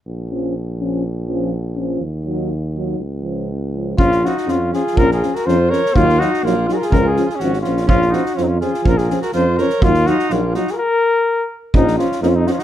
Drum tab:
SD |--------|--------|--------|--------|
BD |--------|--------|--------|--------|

SD |-oooo-oo|-oooo-oo|-oooo-oo|--oooooo|
BD |o-------|o-------|o-------|o-------|

SD |-oooo-oo|-oooo-oo|-oooo-oo|--------|
BD |o-------|o-------|o-------|--------|

SD |-oooo-oo|
BD |o-------|